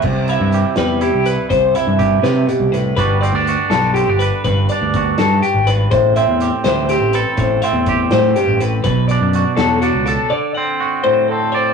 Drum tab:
CC |x-----|------|------|------|
HH |-xxxxx|xxxxxx|xxxxxx|xxxxxx|
SD |---o--|---o--|---o--|---o--|
BD |o-----|o-o---|o-----|o-o---|

CC |------|------|------|------|
HH |xxxxxx|xxxxxx|xxxxxx|------|
SD |---o--|---o--|---o--|------|
BD |o-----|o-o---|o-----|------|